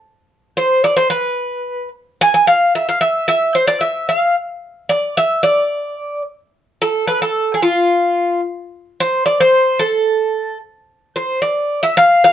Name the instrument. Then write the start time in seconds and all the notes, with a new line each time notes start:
bouzouki
0.57 C5
0.84 D5
0.97 C5
1.10 B4
2.21 G#5
2.34 G#5
2.47 F5
2.75 E5
2.89 F5
3.01 E5
3.28 E5
3.55 C5
3.67 D5
3.81 E5
4.09 F5
4.89 D5
5.17 E5
5.43 D5
6.82 A4
7.07 B4
7.22 A4
7.54 G#4
7.62 F4
9.00 C5
9.26 D5
9.40 C5
9.79 A4
11.16 C5
11.42 D5
11.83 E5
11.97 F5
12.24 F5